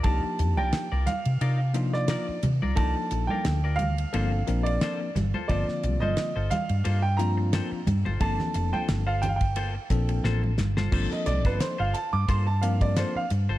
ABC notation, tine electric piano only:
X:1
M:4/4
L:1/8
Q:"Swing 16ths" 1/4=88
K:Gm
V:1 name="Tine electric piano"
[F,B,DEG]2 z3 [F,B,DEF]2 z | [F,B,DEA]2 z2 [F,B,CDA] [F,B,CDB]2 z | [D,F,B,CF]2 z3 [F,B,CDF]2 z | [F,B,CDA]2 z3 [F,B,CDA]2 z |
[F,B,CDA]2 z3 [F,B,CDB]2 z |]